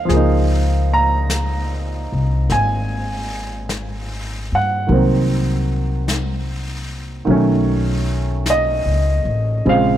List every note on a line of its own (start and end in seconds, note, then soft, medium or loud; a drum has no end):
0.00 0.10 C4 soft
0.00 0.13 D#4 medium
0.00 0.97 F5 medium
0.05 2.08 C#2 medium
0.05 4.88 F3 soft
0.05 4.89 G#4 soft
0.09 4.89 A#3 soft
0.09 brush sweep soft
0.09 snare soft
0.16 4.93 D#4 medium
0.94 2.09 A#5 medium
1.30 brush sweep soft
1.30 snare soft
1.30 hi-hat pedal soft
2.12 2.47 C2 medium
2.49 4.48 G#1 medium
2.49 3.67 G#5 medium
2.49 brush sweep soft
2.49 snare soft
3.69 brush sweep soft
3.69 snare soft
3.69 hi-hat pedal soft
4.52 4.87 G2 medium
4.52 8.59 F#5 medium
4.87 7.23 C2 medium
4.87 7.23 D#3 soft
4.87 7.25 F#3 soft
4.87 7.28 A#3 soft
4.87 brush sweep soft
4.92 7.28 C4 medium
6.08 brush sweep soft
6.08 snare soft
6.08 hi-hat pedal soft
7.25 8.81 B1 medium
7.25 9.64 D#3 medium
7.25 9.65 F#3 soft
7.25 9.65 A3 soft
7.25 brush sweep soft
7.30 9.66 C#4 medium
8.46 brush sweep soft
8.46 snare soft
8.46 hi-hat pedal soft
8.50 9.63 D#5 medium
8.86 9.23 C#2 medium
9.25 9.62 A1 medium
9.65 9.97 A#1 medium
9.65 9.97 C#3 soft
9.65 9.97 F3 soft
9.65 9.97 G#3 soft
9.65 9.97 C4 medium
9.65 brush sweep soft
9.69 9.97 F5 medium